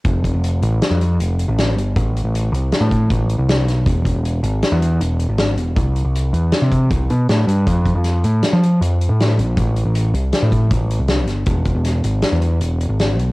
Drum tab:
HH |xxxxxxxxxx|xxxxxxxxxx|xxxxxxxxxx|xxxxxxxxxx|
SD |----o---o-|----o---oo|----o---o-|----o---o-|
BD |oo--------|o----oo---|oo--------|o----oo---|

HH |xxxxxxxxxx|xxxxxxxxxx|xxxxxxxxxx|
SD |--o-o---o-|----o---oo|--o-o---o-|
BD |oo--------|o----oo---|oo--------|